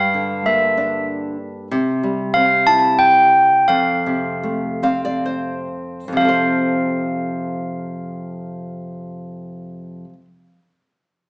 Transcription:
Already playing: nylon-string guitar G2, handbells F5
0.14 nylon-string guitar D3
0.46 nylon-string guitar A#3, handbells E5
0.77 nylon-string guitar D4
1.71 nylon-string guitar C3
2.03 nylon-string guitar G3
2.34 nylon-string guitar C4, handbells F5
2.67 nylon-string guitar E4, handbells A5
2.99 handbells G5
3.68 nylon-string guitar F2, handbells F5
4.06 nylon-string guitar C3
4.43 nylon-string guitar A3
4.83 nylon-string guitar C4 F5
5.05 nylon-string guitar D5
5.26 nylon-string guitar C5
6.08 nylon-string guitar F2
6.12 nylon-string guitar C3
6.17 nylon-string guitar F3, handbells F5
6.21 nylon-string guitar C4 A4
6.29 nylon-string guitar C5

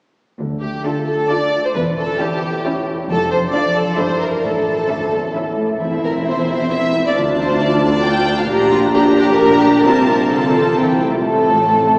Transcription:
0.39 cello section D2, double bass section D2, harp D3
0.62 harp A3, violin section G4
0.85 viola section D4 F4, harp F4, violin section A4 A5
1.08 violin section A4, harp A4
1.29 viola section D4 F4, harp D5, violin section D5 A5
1.52 harp A4
1.65 violin section C5
1.75 double bass section E1, cello section E2, harp E3, violin section B4
1.97 harp C#4, violin section A4
2.19 viola section C#4 E4, harp E4, violin section G4 G5
2.42 harp G4
2.64 viola section C#4 E4, harp C#5, violin section G5
2.86 harp G4
3.09 double bass section F1, cello section F2, harp F3, violin section A4
3.32 harp D4, violin section C5
3.53 viola section D4, harp F4, violin section D5 F5
3.76 violin section A4, harp D5
3.98 double bass section G1, cello section G2, harp G2, viola section D4 E4, violin section C5 E5
4.21 harp E4 E5, violin section A#4
4.44 double bass section A1, harp A2, cello section A2, violin section A4
4.67 harp E3
4.89 cello section D2, viola section C#4 E4, harp C#4, violin section E5
5.12 cello section E2, harp E4
5.35 cello section E2, viola section C#4 E4, harp E5, violin section E5
5.57 cello section A2, harp E4
5.80 double bass section E1, cello section E2, harp E3, viola section C4 E4, violin section E5
6.03 harp C4, violin section A#4
6.26 harp E4, violin section C5
6.49 violin section C5, harp E5
6.72 harp C5, violin section E5
6.95 harp E5
7.07 violin section D5
7.16 double bass section D2, cello section D2, harp D3, viola section D4 F4, violin section A5
7.39 harp A3, violin section C5
7.61 harp D4, violin section D5
7.84 harp A4, violin section D5
8.06 harp F5, violin section G5
8.29 harp A4
8.41 violin section F5
8.50 double bass section A#1, harp A#2, cello section A#2, viola section D4 G4, violin section A#5
8.71 harp A#3, violin section F4
8.94 viola section D4 G4, harp D4, violin section G4 A#5
9.17 harp G4, violin section G4
9.38 viola section D4 G4, violin section A#4 A#5
9.62 violin section G4, harp G4
9.84 double bass section C2, cello section C3, harp C3, viola section C4 F4, violin section A#4 A5
10.09 harp A3
10.32 cello section D3, harp C4, viola section C4 F4, violin section A4 A5
10.55 cello section E3, harp F4
10.78 double bass section C2, harp C3, cello section E3, viola section C4 E4, violin section G5
11.01 cello section A3, harp G4 E5
11.05 harp F2
11.10 harp C4
11.15 harp F4
11.19 harp C5
11.24 double bass section A1, cello section A2, viola section A3, violin section A4, flute A5

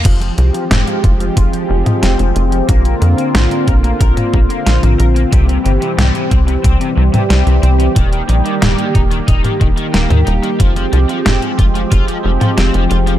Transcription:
0.05 analog synth bass F1, overdriven electric guitar F3, analog synth pad F3 G#3 C4 G4, kick, closed hi-hat, crash
0.21 overdriven electric guitar F3, closed hi-hat
0.38 analog synth bass C2, overdriven electric guitar F3, closed hi-hat
0.54 overdriven electric guitar F3, closed hi-hat
0.71 analog synth bass F1, overdriven electric guitar C4, snare, closed hi-hat, mid tom
0.87 overdriven electric guitar F3, closed hi-hat
1.04 analog synth bass F1, overdriven electric guitar F4, kick, closed hi-hat
1.20 overdriven electric guitar F3, closed hi-hat
1.37 analog synth bass F1, overdriven electric guitar F4, kick, closed hi-hat
1.53 overdriven electric guitar F3, closed hi-hat
1.70 analog synth bass F1, overdriven electric guitar F3
1.86 overdriven electric guitar F3, closed hi-hat, mid tom
2.03 analog synth bass F1, overdriven electric guitar C4, snare, closed hi-hat
2.19 analog synth bass F1, overdriven electric guitar F3, closed hi-hat
2.36 analog synth bass F1, overdriven electric guitar F4, closed hi-hat
2.52 overdriven electric guitar F3, closed hi-hat
2.69 analog synth bass A#1, analog synth pad D3 A#3 F4, overdriven electric guitar A#3, kick, closed hi-hat
2.85 overdriven electric guitar A#3, closed hi-hat
3.02 analog synth bass F2, overdriven electric guitar A#3, closed hi-hat
3.18 overdriven electric guitar A#3, closed hi-hat
3.35 analog synth bass A#1, overdriven electric guitar F4, snare, closed hi-hat, mid tom
3.51 overdriven electric guitar A#3, closed hi-hat
3.68 analog synth bass A#1, overdriven electric guitar A#4, kick, closed hi-hat
3.84 overdriven electric guitar A#3, closed hi-hat
4.01 analog synth bass A#1, overdriven electric guitar A#4, kick, closed hi-hat
4.17 overdriven electric guitar A#3, closed hi-hat, mid tom
4.34 analog synth bass A#1, overdriven electric guitar A#3, kick
4.50 overdriven electric guitar A#3, closed hi-hat
4.66 analog synth bass A#1, overdriven electric guitar F4, snare, closed hi-hat
4.83 analog synth bass A#1, overdriven electric guitar A#3, closed hi-hat, mid tom
4.99 analog synth bass A#1, overdriven electric guitar A#4, closed hi-hat
5.16 overdriven electric guitar A#3, closed hi-hat
5.32 analog synth bass C2, overdriven electric guitar C3, analog synth pad E3 G3 G4, kick, closed hi-hat
5.49 overdriven electric guitar C3, closed hi-hat
5.65 analog synth bass G1, overdriven electric guitar C3, closed hi-hat
5.82 overdriven electric guitar C3, closed hi-hat
5.98 analog synth bass C2, overdriven electric guitar G3, snare, closed hi-hat, mid tom
6.15 overdriven electric guitar C3, closed hi-hat
6.31 analog synth bass C2, overdriven electric guitar C4, kick, closed hi-hat
6.48 overdriven electric guitar C3, closed hi-hat
6.64 analog synth bass C2, overdriven electric guitar C4, kick, closed hi-hat
6.81 overdriven electric guitar C3, closed hi-hat
6.97 analog synth bass C2, overdriven electric guitar C3
7.14 overdriven electric guitar C3, closed hi-hat, mid tom
7.30 analog synth bass C2, overdriven electric guitar G3, snare, closed hi-hat
7.46 analog synth bass C2, overdriven electric guitar C3, closed hi-hat
7.63 analog synth bass C2, overdriven electric guitar C4, closed hi-hat
7.80 overdriven electric guitar C3, closed hi-hat
7.96 analog synth bass D#1, analog synth pad D#3 A#3, overdriven electric guitar D#3, kick, closed hi-hat
8.13 overdriven electric guitar D#3, closed hi-hat
8.29 analog synth bass A#1, overdriven electric guitar D#3, closed hi-hat
8.46 overdriven electric guitar D#3, closed hi-hat
8.62 analog synth bass D#1, overdriven electric guitar A#3, snare, closed hi-hat, mid tom
8.78 overdriven electric guitar D#3, closed hi-hat
8.95 analog synth bass D#1, overdriven electric guitar D#4, kick, closed hi-hat
9.11 overdriven electric guitar D#3, closed hi-hat
9.28 analog synth bass D#1, overdriven electric guitar D#4, kick, closed hi-hat
9.44 overdriven electric guitar D#3, closed hi-hat, mid tom
9.61 analog synth bass D#1, overdriven electric guitar D#3, kick, closed hi-hat
9.77 overdriven electric guitar D#3, closed hi-hat
9.94 analog synth bass D#1, overdriven electric guitar A#3, snare, closed hi-hat
10.10 analog synth bass D#2, overdriven electric guitar D#3, closed hi-hat, mid tom
10.27 analog synth bass D#1, overdriven electric guitar D#4, closed hi-hat
10.43 overdriven electric guitar D#3, closed hi-hat
10.60 analog synth bass F1, analog synth pad F3 G#3 C4, overdriven electric guitar F3, kick, closed hi-hat
10.76 overdriven electric guitar F3, closed hi-hat
10.93 analog synth bass C2, overdriven electric guitar F3, closed hi-hat
11.09 overdriven electric guitar F3, closed hi-hat
11.26 analog synth bass F1, overdriven electric guitar C4, snare, closed hi-hat, mid tom
11.42 overdriven electric guitar F3, closed hi-hat
11.59 analog synth bass F1, overdriven electric guitar F4, kick, closed hi-hat
11.75 overdriven electric guitar F3, closed hi-hat
11.92 analog synth bass F1, overdriven electric guitar F4, kick, closed hi-hat
12.08 overdriven electric guitar F3, closed hi-hat
12.25 analog synth bass F1, overdriven electric guitar F3
12.41 overdriven electric guitar F3, closed hi-hat, mid tom
12.57 analog synth bass F1, overdriven electric guitar C4, snare, closed hi-hat
12.74 analog synth bass F1, overdriven electric guitar F3, closed hi-hat
12.91 analog synth bass F1, overdriven electric guitar F4, closed hi-hat
13.07 overdriven electric guitar F3, closed hi-hat

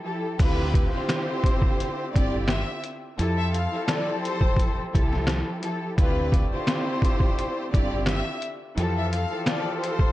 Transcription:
0.03 string section F3 E4 G4 A4
0.38 fingered electric bass D2, string section D3 C4 E4 F4 G4, trumpet section C4 G4, violin section B4, kick, closed hi-hat, crash
0.74 kick, closed hi-hat
0.93 string section D3 C4 E4 F4 G4, violin section C5
1.09 snare, closed hi-hat
1.44 kick, closed hi-hat
1.62 kick
1.80 closed hi-hat
2.12 fingered electric bass G1, string section D3 C4 E4 F4 G4, violin section D5, kick
2.16 closed hi-hat
2.48 violin section E5, snare, closed hi-hat
2.84 closed hi-hat
3.18 fingered electric bass F2, string section F3 E4 G4 A4, trumpet section C4 A4, closed hi-hat
3.38 violin section E5
3.53 violin section F5, closed hi-hat
3.71 string section F3 E4 G4 A4
3.88 violin section D5, snare, closed hi-hat
4.23 violin section C5, closed hi-hat
4.41 kick
4.57 kick, closed hi-hat
4.92 fingered electric bass C2, string section F3 E4 G4 A4, kick, closed hi-hat
5.13 snare
5.27 snare, closed hi-hat
5.61 string section F3 E4 G4 A4, closed hi-hat
5.96 fingered electric bass D2, string section D3 C4 E4 F4 G4, trumpet section A3 G4 D5, violin section B4, kick, closed hi-hat
6.32 kick, closed hi-hat
6.52 string section D3 C4 E4 F4 G4, violin section C5
6.67 snare, closed hi-hat
7.02 kick, closed hi-hat
7.20 kick
7.39 closed hi-hat
7.70 string section D3 C4 E4 F4 G4, violin section D5, kick
7.74 fingered electric bass G1, closed hi-hat
8.06 violin section E5, snare, closed hi-hat
8.42 closed hi-hat
8.76 fingered electric bass F2, string section E3 F3 G4 A4, trumpet section C4 A4 F5, closed hi-hat
8.97 violin section E5
9.12 violin section F5, closed hi-hat
9.29 string section E3 F3 G4 A4
9.46 violin section D5, snare, closed hi-hat
9.81 violin section C5, closed hi-hat
9.99 kick

